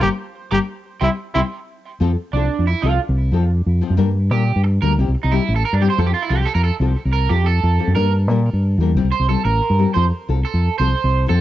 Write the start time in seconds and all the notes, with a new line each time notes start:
0.01 G1 G3 A#3 D4 G4 G5 A#5 D6
0.51 G1 G3 A#3 D4 G4 G5 A#5 D6
1.01 C2 G3 C4 E4 E5 G5 C6
1.34 C2 G3 C4 E4 E5 G5 C6
2.00 F2 F3 C4 F4 A4
2.33 C2 F3 C4 D4 F4 A4
2.59 F2
2.67 E4
2.82 C2 F3 C4 F4 A4
3.09 C2
3.32 F2 F3 C4 F4 A4
3.66 F2
3.81 F3 C4 F4, muted nylon-string guitar stroke
3.90 F#2
3.97 G2 G3 A#3 D4 A#4
4.31 A#2 G3 A#3 D4 G4 A#4
4.56 G2
4.64 muted clean electric guitar stroke
4.82 D2 G3 A#3 D4 A#4
4.99 C2 C4 E4 G4, muted nylon-string guitar stroke
5.08 C2
5.23 C2 D#4
5.32 G3 C4 E4 G4
5.48 A1
5.56 A4
5.65 A#4
5.73 G2 D4
5.81 G3 C4 E4 G4
5.90 C5
5.98 F2 F3 C4 F4 A4
6.07 G4
6.14 F4
6.22 E4
6.29 C2 F3 F4 A4
6.38 G4
6.46 A4
6.55 F2 A#4
6.64 A4
6.80 C2 F3 C4 F4 A4
7.05 C2
7.13 A#4
7.29 F2 F3 C4 F4 G4 A4
7.46 A4
7.63 F2
7.79 F3 C4 F4 A4
7.87 F#2
7.95 G2 A#3 D4 A#4, muted nylon-string guitar stroke
8.28 A#2 G3 A#3 D4 A#4
8.53 G2
8.78 E2 G3 A#3 D4
8.82 A#4
8.95 C2 G3 C4 E4, muted nylon-string guitar stroke
9.03 C2
9.12 C5
9.19 C2
9.28 G3 C4 E4 A4
9.45 A1 A#4
9.70 G2
9.79 G3 C4 E4 G4
9.94 F2 F3 C4 F4 A4 C5
10.28 C2 C4 F4 A4
10.45 A4
10.54 F2
10.78 C2 F3 C4 F4 A4 C5
11.04 C2
11.27 F2 F3 C4 F4 A4